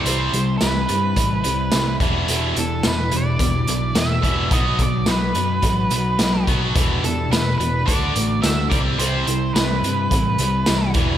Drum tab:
HH |xxxxxxxx|xxxxxxxx|xxxxxxxx|xxxxxxxx|
TB |--x---x-|--x---x-|--x---x-|--x---x-|
SD |--o---o-|--o---o-|--o---o-|--o---o-|
BD |----o--o|----o--o|oo--o--o|o---o--o|

HH |xxxxxxxx|
TB |--x---x-|
SD |--o---o-|
BD |----o--o|